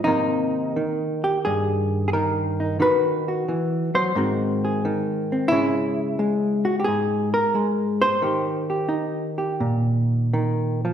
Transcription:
hollow-body jazz guitar
0.04 C3 D#3 A#3 D#4
0.76 D#3
1.24 G4
1.45 G2 G#4
2.08 G#4
2.13 D#3 A#4
2.60 D#4
2.80 D#3 D#4 F#4 B4
3.28 F#4
3.48 E3
3.95 F#3 C5
4.15 G#2 D#3 C4 F#4
4.65 G#4
4.85 D#3
5.32 C4
5.48 C#3 G#3 E4
5.53 C#4
6.19 G#3
6.65 F#4
6.80 G4
6.84 G#2 G#4
7.34 A#4
7.55 G#3
8.02 C5
8.22 D#3 G4
8.70 G4
8.89 D#4
9.38 G4
9.60 A#2
10.34 D#3
10.85 F3

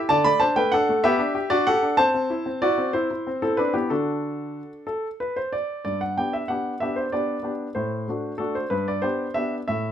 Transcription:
grand piano
Already playing: E4
0.09 D3 D5 A5
0.24 A3 D5 B5
0.40 D4 C5 A5
0.56 A3 B4 G5
0.72 D4 A4 F#5
0.89 A3
1.04 B3 G4 E5
1.19 D4
1.35 G4
1.50 D4 F#4 D5
1.67 G4 A4 F#5
1.83 D4
1.97 C4 C5 A5
2.14 C4
2.30 E4
2.46 C4
2.62 E4 F#4 D5
2.78 C4
2.93 C4 E4 C5
3.11 E4
3.27 C4
3.42 C4 E4 A4
3.57 C4 D4 B4
3.74 B3 E4 G4
3.90 D3 D4 F#4 A4
4.87 A4
5.20 B4
5.36 C5
5.53 D5
5.85 G2 D5
6.01 F#5
6.17 B3 D4 G4 G5
6.33 E5
6.48 B3 D4 G4 F#5
6.80 B3 D4 G4 E5
6.96 C5
7.12 B3 D4 G4 D5
7.43 B3 D4 G4
7.75 A2 C5
8.08 A3 D4 F#4
8.38 A3 D4 F#4 A4
8.55 C5
8.70 G2 B4
8.88 D5
9.02 B3 D4 G4 C5
9.34 B3 D4 G4 E5
9.68 A2 E5

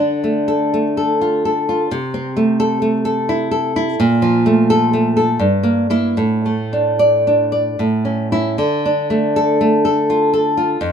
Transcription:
nylon-string guitar
Already playing: D3 D4
0.24 A3
0.48 A4
0.74 A3
0.97 A4
1.21 F4
1.45 A4
1.69 F4
1.91 C3
2.14 C4
2.37 A3
2.60 A4
2.82 A3
3.05 A4
3.29 E4
3.51 A4
3.76 E4
4.00 A#2
4.22 F3
4.46 A3
4.70 A4
4.93 A3
5.17 A4
5.39 G2
5.63 A#3
5.90 A#3 E4
6.17 A2
6.46 A3
6.73 D4
6.99 D5
7.27 D4
7.52 D5
7.79 A2
8.05 C#4
8.32 C#4 E4
8.58 D3
8.86 D4
9.10 A3
9.36 A4
9.61 A3
9.85 A4
10.10 F4
10.33 A4
10.57 F4
10.81 F2

